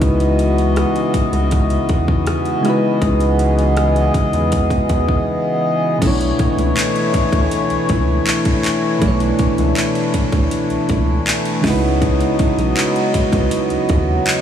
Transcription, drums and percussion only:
0.02 kick, closed hi-hat
0.20 closed hi-hat
0.39 closed hi-hat
0.58 closed hi-hat
0.76 cross-stick, closed hi-hat
0.96 closed hi-hat
1.14 kick, closed hi-hat
1.33 closed hi-hat
1.51 kick, closed hi-hat
1.70 closed hi-hat
1.89 kick, closed hi-hat
2.08 kick
2.27 cross-stick, closed hi-hat
2.45 closed hi-hat
2.65 cross-stick, closed hi-hat
3.02 kick, closed hi-hat
3.20 closed hi-hat
3.39 closed hi-hat
3.59 closed hi-hat
3.77 cross-stick, closed hi-hat
3.96 closed hi-hat
4.14 kick, closed hi-hat
4.33 closed hi-hat
4.52 kick, closed hi-hat
4.70 kick, closed hi-hat
4.89 kick, closed hi-hat
5.09 kick
6.02 kick, closed hi-hat, crash
6.21 closed hi-hat
6.39 kick, closed hi-hat
6.59 closed hi-hat
6.77 clap, closed hi-hat
6.96 closed hi-hat
7.14 kick, closed hi-hat
7.33 kick, closed hi-hat
7.51 closed hi-hat
7.70 closed hi-hat
7.89 kick, closed hi-hat
8.26 clap, closed hi-hat
8.45 kick, closed hi-hat
8.64 clap, closed hi-hat
9.02 kick, closed hi-hat
9.20 closed hi-hat
9.39 kick, closed hi-hat
9.58 closed hi-hat
9.76 clap, closed hi-hat
9.95 closed hi-hat
10.14 kick, closed hi-hat
10.32 kick, closed hi-hat
10.51 closed hi-hat
10.70 closed hi-hat
10.89 kick, closed hi-hat
11.27 clap, closed hi-hat
11.45 closed hi-hat
11.64 kick, clap, open hi-hat
12.02 kick, closed hi-hat
12.21 closed hi-hat
12.39 kick, closed hi-hat
12.59 closed hi-hat
12.77 clap, closed hi-hat
12.96 closed hi-hat
13.14 kick, closed hi-hat
13.33 kick, closed hi-hat
13.51 closed hi-hat
13.70 closed hi-hat
13.89 kick, closed hi-hat
14.27 clap, closed hi-hat

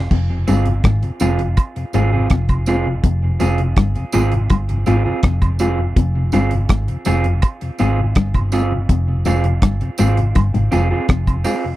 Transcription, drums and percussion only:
0.11 kick, crash
0.48 closed hi-hat, tambourine
0.66 closed hi-hat
0.84 kick, cross-stick, closed hi-hat
1.03 closed hi-hat
1.20 closed hi-hat, tambourine
1.39 closed hi-hat
1.57 kick, closed hi-hat, high woodblock
1.76 closed hi-hat
1.93 closed hi-hat, tambourine
2.30 kick, cross-stick, closed hi-hat
2.49 kick, closed hi-hat, high woodblock
2.66 closed hi-hat, tambourine
3.04 kick, closed hi-hat
3.40 closed hi-hat, tambourine
3.58 closed hi-hat
3.76 kick, cross-stick, closed hi-hat
3.96 closed hi-hat
4.12 closed hi-hat, tambourine
4.32 closed hi-hat
4.50 kick, closed hi-hat, high woodblock
4.69 closed hi-hat
4.86 closed hi-hat, tambourine
5.23 kick, cross-stick, closed hi-hat
5.42 kick, closed hi-hat, high woodblock
5.59 closed hi-hat, tambourine
5.96 kick, closed hi-hat
6.32 closed hi-hat, tambourine
6.51 closed hi-hat
6.69 kick, cross-stick, closed hi-hat
6.88 closed hi-hat
7.05 closed hi-hat, tambourine
7.24 closed hi-hat
7.42 kick, closed hi-hat, high woodblock
7.61 closed hi-hat
7.78 closed hi-hat, tambourine
8.15 kick, cross-stick, closed hi-hat
8.34 kick, closed hi-hat, high woodblock
8.52 closed hi-hat, tambourine
8.89 kick, closed hi-hat
9.25 closed hi-hat, tambourine
9.44 closed hi-hat
9.62 kick, cross-stick, closed hi-hat
9.81 closed hi-hat
9.98 closed hi-hat, tambourine
10.17 closed hi-hat
10.35 kick, closed hi-hat, high woodblock
10.55 closed hi-hat
10.72 closed hi-hat, tambourine
11.09 kick, cross-stick, closed hi-hat
11.27 kick, closed hi-hat, high woodblock
11.44 open hi-hat, tambourine

